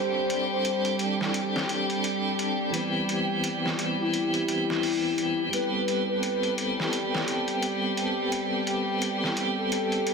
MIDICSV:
0, 0, Header, 1, 6, 480
1, 0, Start_track
1, 0, Key_signature, 0, "minor"
1, 0, Tempo, 697674
1, 1888, Time_signature, 4, 2, 24, 8
1, 6974, End_track
2, 0, Start_track
2, 0, Title_t, "Soft synth lead"
2, 0, Program_c, 0, 80
2, 0, Note_on_c, 0, 72, 93
2, 308, Note_off_c, 0, 72, 0
2, 354, Note_on_c, 0, 72, 88
2, 661, Note_off_c, 0, 72, 0
2, 2755, Note_on_c, 0, 64, 91
2, 3731, Note_off_c, 0, 64, 0
2, 3808, Note_on_c, 0, 71, 92
2, 4145, Note_off_c, 0, 71, 0
2, 4186, Note_on_c, 0, 71, 89
2, 4497, Note_off_c, 0, 71, 0
2, 6587, Note_on_c, 0, 69, 92
2, 6974, Note_off_c, 0, 69, 0
2, 6974, End_track
3, 0, Start_track
3, 0, Title_t, "Synth drone"
3, 0, Program_c, 1, 95
3, 0, Note_on_c, 1, 55, 69
3, 0, Note_on_c, 1, 67, 76
3, 6974, Note_off_c, 1, 55, 0
3, 6974, Note_off_c, 1, 67, 0
3, 6974, End_track
4, 0, Start_track
4, 0, Title_t, "Violin section"
4, 0, Program_c, 2, 48
4, 0, Note_on_c, 2, 55, 65
4, 0, Note_on_c, 2, 67, 68
4, 3808, Note_off_c, 2, 55, 0
4, 3808, Note_off_c, 2, 67, 0
4, 3817, Note_on_c, 2, 55, 68
4, 3817, Note_on_c, 2, 67, 72
4, 6974, Note_off_c, 2, 55, 0
4, 6974, Note_off_c, 2, 67, 0
4, 6974, End_track
5, 0, Start_track
5, 0, Title_t, "Tonewheel organ"
5, 0, Program_c, 3, 16
5, 0, Note_on_c, 3, 55, 67
5, 0, Note_on_c, 3, 60, 61
5, 0, Note_on_c, 3, 62, 58
5, 0, Note_on_c, 3, 69, 74
5, 1856, Note_off_c, 3, 55, 0
5, 1864, Note_off_c, 3, 60, 0
5, 1872, Note_off_c, 3, 62, 0
5, 1872, Note_on_c, 3, 52, 61
5, 1878, Note_off_c, 3, 69, 0
5, 1887, Note_on_c, 3, 59, 60
5, 1900, Note_on_c, 3, 60, 59
5, 1917, Note_on_c, 3, 67, 69
5, 3776, Note_off_c, 3, 52, 0
5, 3783, Note_off_c, 3, 59, 0
5, 3790, Note_off_c, 3, 60, 0
5, 3791, Note_on_c, 3, 55, 65
5, 3798, Note_off_c, 3, 67, 0
5, 3805, Note_on_c, 3, 59, 58
5, 3821, Note_on_c, 3, 60, 59
5, 3837, Note_on_c, 3, 69, 70
5, 6974, Note_off_c, 3, 55, 0
5, 6974, Note_off_c, 3, 59, 0
5, 6974, Note_off_c, 3, 60, 0
5, 6974, Note_off_c, 3, 69, 0
5, 6974, End_track
6, 0, Start_track
6, 0, Title_t, "Drums"
6, 206, Note_on_c, 9, 42, 58
6, 275, Note_off_c, 9, 42, 0
6, 446, Note_on_c, 9, 42, 78
6, 515, Note_off_c, 9, 42, 0
6, 584, Note_on_c, 9, 42, 36
6, 652, Note_off_c, 9, 42, 0
6, 683, Note_on_c, 9, 42, 58
6, 752, Note_off_c, 9, 42, 0
6, 832, Note_on_c, 9, 38, 34
6, 901, Note_off_c, 9, 38, 0
6, 924, Note_on_c, 9, 42, 74
6, 992, Note_off_c, 9, 42, 0
6, 1073, Note_on_c, 9, 38, 50
6, 1142, Note_off_c, 9, 38, 0
6, 1165, Note_on_c, 9, 42, 56
6, 1233, Note_off_c, 9, 42, 0
6, 1306, Note_on_c, 9, 42, 35
6, 1375, Note_off_c, 9, 42, 0
6, 1404, Note_on_c, 9, 42, 72
6, 1473, Note_off_c, 9, 42, 0
6, 1645, Note_on_c, 9, 42, 56
6, 1714, Note_off_c, 9, 42, 0
6, 1883, Note_on_c, 9, 42, 75
6, 1952, Note_off_c, 9, 42, 0
6, 2126, Note_on_c, 9, 42, 57
6, 2195, Note_off_c, 9, 42, 0
6, 2365, Note_on_c, 9, 42, 75
6, 2434, Note_off_c, 9, 42, 0
6, 2516, Note_on_c, 9, 38, 30
6, 2585, Note_off_c, 9, 38, 0
6, 2606, Note_on_c, 9, 42, 60
6, 2675, Note_off_c, 9, 42, 0
6, 2845, Note_on_c, 9, 42, 72
6, 2914, Note_off_c, 9, 42, 0
6, 2985, Note_on_c, 9, 42, 38
6, 3054, Note_off_c, 9, 42, 0
6, 3085, Note_on_c, 9, 42, 59
6, 3154, Note_off_c, 9, 42, 0
6, 3234, Note_on_c, 9, 38, 31
6, 3303, Note_off_c, 9, 38, 0
6, 3325, Note_on_c, 9, 46, 64
6, 3393, Note_off_c, 9, 46, 0
6, 3564, Note_on_c, 9, 42, 53
6, 3633, Note_off_c, 9, 42, 0
6, 3805, Note_on_c, 9, 42, 78
6, 3874, Note_off_c, 9, 42, 0
6, 4046, Note_on_c, 9, 42, 56
6, 4115, Note_off_c, 9, 42, 0
6, 4286, Note_on_c, 9, 42, 73
6, 4355, Note_off_c, 9, 42, 0
6, 4426, Note_on_c, 9, 42, 34
6, 4495, Note_off_c, 9, 42, 0
6, 4527, Note_on_c, 9, 42, 58
6, 4596, Note_off_c, 9, 42, 0
6, 4677, Note_on_c, 9, 38, 36
6, 4745, Note_off_c, 9, 38, 0
6, 4767, Note_on_c, 9, 42, 77
6, 4835, Note_off_c, 9, 42, 0
6, 4916, Note_on_c, 9, 38, 51
6, 4985, Note_off_c, 9, 38, 0
6, 5007, Note_on_c, 9, 42, 61
6, 5076, Note_off_c, 9, 42, 0
6, 5145, Note_on_c, 9, 42, 35
6, 5214, Note_off_c, 9, 42, 0
6, 5246, Note_on_c, 9, 42, 71
6, 5315, Note_off_c, 9, 42, 0
6, 5486, Note_on_c, 9, 42, 58
6, 5555, Note_off_c, 9, 42, 0
6, 5725, Note_on_c, 9, 42, 78
6, 5794, Note_off_c, 9, 42, 0
6, 5965, Note_on_c, 9, 42, 53
6, 6034, Note_off_c, 9, 42, 0
6, 6204, Note_on_c, 9, 42, 76
6, 6273, Note_off_c, 9, 42, 0
6, 6356, Note_on_c, 9, 38, 30
6, 6425, Note_off_c, 9, 38, 0
6, 6445, Note_on_c, 9, 42, 62
6, 6514, Note_off_c, 9, 42, 0
6, 6687, Note_on_c, 9, 42, 77
6, 6756, Note_off_c, 9, 42, 0
6, 6826, Note_on_c, 9, 42, 39
6, 6894, Note_off_c, 9, 42, 0
6, 6926, Note_on_c, 9, 42, 60
6, 6974, Note_off_c, 9, 42, 0
6, 6974, End_track
0, 0, End_of_file